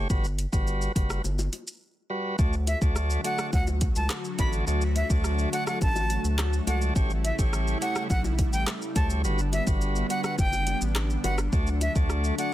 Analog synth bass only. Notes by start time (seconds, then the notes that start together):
0.10 G1
0.53 G1
0.96 F#1
1.25 G1
2.39 D2
2.82 D2
3.53 D2
3.96 C#2
4.39 A1
4.67 D2
5.10 D2
5.82 A1
6.24 D2
6.67 C#2
6.96 A1
7.39 A1
8.10 B1
8.53 A1
8.96 D2
9.24 G1
9.67 G1
10.39 F#1
10.81 A1
11.24 G1
11.53 D2
11.96 D2